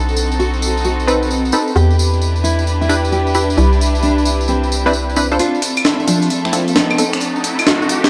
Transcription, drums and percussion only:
0.09 tambourine soft
0.16 tambourine medium
0.32 tambourine soft
0.40 tambourine soft
0.54 tambourine soft
0.62 tambourine medium
0.77 tambourine soft
0.85 tambourine soft
1.00 tambourine soft
1.08 tambourine medium
1.23 tambourine soft
1.31 tambourine soft
1.45 tambourine soft
1.52 tambourine medium
1.67 tambourine soft
1.77 tambourine soft
1.90 tambourine soft
1.99 tambourine medium
2.13 tambourine soft
2.21 tambourine soft
2.36 tambourine soft
2.45 tambourine medium
2.59 tambourine soft
2.67 tambourine medium
2.82 tambourine soft
2.89 tambourine medium
3.05 tambourine soft
3.12 tambourine medium
3.27 tambourine soft
3.35 tambourine medium
3.50 tambourine soft
3.57 tambourine soft
3.73 tambourine soft
3.81 tambourine medium
3.95 tambourine soft
4.03 tambourine soft
4.18 tambourine soft
4.25 tambourine medium
4.41 tambourine soft
4.48 tambourine medium
4.64 tambourine soft
4.72 tambourine medium
4.87 tambourine soft
4.93 tambourine medium
5.09 tambourine soft
5.16 tambourine medium
5.31 tambourine soft
5.39 closed hi-hat medium
5.39 tambourine medium
5.55 tambourine soft
5.62 closed hi-hat loud
5.62 tambourine medium
5.77 closed hi-hat medium
5.77 tambourine soft
5.77 claves medium
5.84 snare loud
5.84 closed hi-hat medium
5.84 tambourine soft
6.00 tambourine soft
6.08 closed hi-hat medium
6.08 tambourine medium
6.22 closed hi-hat soft
6.22 tambourine soft
6.30 closed hi-hat medium
6.30 tambourine medium
6.45 finger snap medium
6.45 tambourine soft
6.53 closed hi-hat loud
6.53 tambourine medium
6.68 closed hi-hat soft
6.68 tambourine soft
6.76 snare loud
6.76 closed hi-hat medium
6.76 tambourine soft
6.90 tambourine soft
6.90 claves medium
6.98 closed hi-hat loud
6.98 tambourine medium
7.13 finger snap medium
7.13 closed hi-hat medium
7.13 tambourine soft
7.20 closed hi-hat medium
7.20 tambourine medium
7.36 tambourine soft
7.44 closed hi-hat loud
7.44 tambourine medium
7.59 closed hi-hat medium
7.59 tambourine soft
7.59 claves medium
7.66 snare loud
7.66 closed hi-hat medium
7.66 tambourine medium
7.82 tambourine soft
7.89 closed hi-hat medium
7.89 tambourine medium
8.04 snare medium
8.04 closed hi-hat soft
8.04 tambourine soft

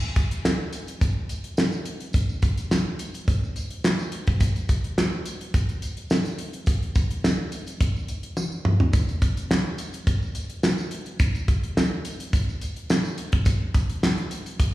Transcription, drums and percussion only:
0.02 tambourine soft
0.16 kick loud
0.16 closed hi-hat medium
0.16 tambourine soft
0.31 closed hi-hat soft
0.31 tambourine soft
0.45 snare loud
0.45 clap loud
0.45 tambourine medium
0.73 closed hi-hat medium
0.73 tambourine medium
0.87 closed hi-hat medium
0.87 tambourine soft
1.01 kick loud
1.01 closed hi-hat loud
1.01 tambourine medium
1.29 closed hi-hat medium
1.29 tambourine medium
1.44 closed hi-hat soft
1.57 snare loud
1.57 clap medium
1.57 tambourine loud
1.72 tambourine medium
1.85 closed hi-hat medium
2.00 closed hi-hat soft
2.13 kick loud
2.13 closed hi-hat loud
2.13 tambourine medium
2.29 tambourine soft
2.42 kick loud
2.42 closed hi-hat medium
2.42 tambourine medium
2.57 closed hi-hat soft
2.57 tambourine soft
2.71 snare loud
2.71 clap medium
2.71 tambourine loud
2.99 closed hi-hat medium
2.99 tambourine medium
3.14 closed hi-hat medium
3.14 tambourine soft
3.28 kick loud
3.28 closed hi-hat medium
3.28 tambourine medium
3.44 tambourine soft
3.56 closed hi-hat medium
3.56 tambourine medium
3.70 closed hi-hat soft
3.84 snare loud
3.84 clap loud
3.84 tambourine medium
3.99 tambourine medium
4.12 closed hi-hat medium
4.27 kick loud
4.27 closed hi-hat medium
4.40 kick loud
4.40 closed hi-hat loud
4.40 tambourine medium
4.56 closed hi-hat soft
4.56 tambourine soft
4.69 kick medium
4.69 closed hi-hat medium
4.69 tambourine soft
4.84 closed hi-hat soft
4.98 snare loud
4.98 clap loud
4.98 tambourine medium
5.26 closed hi-hat medium
5.26 tambourine medium
5.41 closed hi-hat medium
5.54 kick loud
5.54 closed hi-hat medium
5.54 tambourine medium
5.69 closed hi-hat soft
5.69 tambourine soft
5.82 closed hi-hat medium
5.82 tambourine medium
5.97 closed hi-hat soft
6.10 snare loud
6.10 clap medium
6.10 tambourine loud
6.25 closed hi-hat soft
6.25 tambourine medium
6.38 closed hi-hat medium
6.53 closed hi-hat medium
6.66 kick loud
6.66 closed hi-hat loud
6.66 tambourine medium
6.83 closed hi-hat soft
6.95 kick loud
6.95 closed hi-hat medium
6.95 tambourine medium
7.11 closed hi-hat medium
7.24 snare loud
7.24 clap medium
7.24 tambourine medium
7.52 closed hi-hat medium
7.52 tambourine medium
7.67 closed hi-hat medium
7.67 tambourine soft
7.81 kick loud
7.81 closed hi-hat loud
7.81 tambourine soft
7.96 tambourine soft
8.08 closed hi-hat medium
8.08 tambourine medium
8.23 closed hi-hat soft
8.37 high tom medium
8.37 tambourine loud
8.52 tambourine medium
8.65 mid tom loud
8.80 floor tom loud
8.93 kick loud
8.93 closed hi-hat medium
8.93 tambourine medium
9.08 closed hi-hat soft
9.08 tambourine soft
9.22 kick medium
9.22 closed hi-hat medium
9.22 tambourine medium
9.37 closed hi-hat soft
9.37 tambourine soft
9.51 snare loud
9.51 clap loud
9.51 tambourine medium
9.78 closed hi-hat medium
9.78 tambourine medium
9.93 closed hi-hat medium
9.93 tambourine soft
10.07 kick loud
10.07 closed hi-hat medium
10.07 tambourine soft
10.22 tambourine soft
10.35 closed hi-hat medium
10.35 tambourine medium
10.50 closed hi-hat soft
10.63 snare loud
10.63 clap medium
10.63 tambourine loud
10.78 tambourine medium
10.91 closed hi-hat medium
11.06 closed hi-hat medium
11.19 kick loud
11.19 closed hi-hat loud
11.19 tambourine medium
11.35 closed hi-hat soft
11.35 tambourine soft
11.48 kick loud
11.48 closed hi-hat medium
11.48 tambourine soft
11.63 closed hi-hat soft
11.77 snare loud
11.77 clap medium
11.77 tambourine medium
12.05 closed hi-hat medium
12.05 tambourine medium
12.20 closed hi-hat medium
12.20 tambourine soft
12.33 kick loud
12.33 closed hi-hat medium
12.33 tambourine medium
12.49 tambourine soft
12.61 closed hi-hat medium
12.61 tambourine medium
12.76 closed hi-hat soft
12.90 snare loud
12.90 clap medium
12.90 tambourine loud
13.04 tambourine medium
13.18 closed hi-hat medium
13.32 kick loud
13.32 closed hi-hat medium
13.45 kick loud
13.45 closed hi-hat loud
13.45 tambourine medium
13.74 kick loud
13.74 closed hi-hat medium
13.74 tambourine medium
13.90 closed hi-hat medium
14.03 snare loud
14.03 clap medium
14.03 tambourine medium
14.18 closed hi-hat soft
14.31 closed hi-hat medium
14.31 tambourine medium
14.46 closed hi-hat medium
14.46 tambourine soft
14.60 kick loud
14.60 closed hi-hat loud
14.60 tambourine soft

